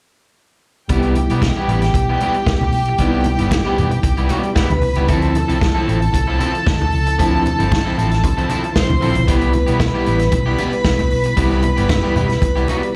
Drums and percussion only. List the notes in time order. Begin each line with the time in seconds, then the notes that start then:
0.89 kick, closed hi-hat, muted conga
1.02 closed hi-hat
1.15 closed hi-hat, muted conga
1.30 closed hi-hat
1.42 kick, snare, high conga
1.69 closed hi-hat
1.82 snare, closed hi-hat
1.94 kick, closed hi-hat, muted conga
2.21 closed hi-hat, muted conga
2.34 closed hi-hat
2.47 kick, snare, high conga
2.61 high conga
2.72 open hi-hat
2.85 closed hi-hat
2.98 kick, closed hi-hat, muted conga
3.24 closed hi-hat, muted conga
3.39 closed hi-hat
3.51 kick, snare, high conga
3.78 closed hi-hat, low conga
3.91 closed hi-hat
4.03 kick, closed hi-hat, muted conga
4.17 closed hi-hat
4.29 closed hi-hat, muted conga
4.43 closed hi-hat
4.56 kick, snare, high conga
4.70 closed hi-hat, high conga
4.82 open hi-hat
4.95 closed hi-hat
5.08 kick, closed hi-hat
5.22 closed hi-hat
5.35 closed hi-hat, muted conga
5.49 closed hi-hat
5.61 kick, snare, high conga
5.89 closed hi-hat
6.02 closed hi-hat
6.14 kick, closed hi-hat, muted conga
6.40 closed hi-hat, muted conga
6.55 closed hi-hat
6.67 kick, snare, high conga
6.82 high conga
6.92 open hi-hat
7.07 closed hi-hat
7.19 kick, closed hi-hat, muted conga
7.46 closed hi-hat, muted conga
7.60 closed hi-hat
7.72 kick, snare, high conga
7.99 closed hi-hat
8.12 snare, closed hi-hat
8.24 kick, closed hi-hat, muted conga
8.38 closed hi-hat
8.50 closed hi-hat, muted conga
8.64 closed hi-hat
8.76 kick, snare, high conga
8.90 high conga
9.02 open hi-hat
9.15 closed hi-hat
9.28 kick, closed hi-hat
9.41 closed hi-hat
9.53 closed hi-hat, muted conga
9.67 closed hi-hat
9.80 kick, snare, high conga
10.06 closed hi-hat
10.19 snare, closed hi-hat
10.32 kick, closed hi-hat, muted conga
10.59 closed hi-hat, muted conga
10.73 closed hi-hat
10.85 kick, snare, high conga
10.99 closed hi-hat, high conga
11.10 open hi-hat
11.24 closed hi-hat
11.37 kick, closed hi-hat, muted conga
11.50 closed hi-hat
11.63 closed hi-hat, muted conga
11.77 closed hi-hat
11.89 kick, snare, high conga
12.16 closed hi-hat, low conga
12.30 snare, closed hi-hat
12.42 kick, closed hi-hat, muted conga
12.57 closed hi-hat
12.68 closed hi-hat, muted conga
12.83 closed hi-hat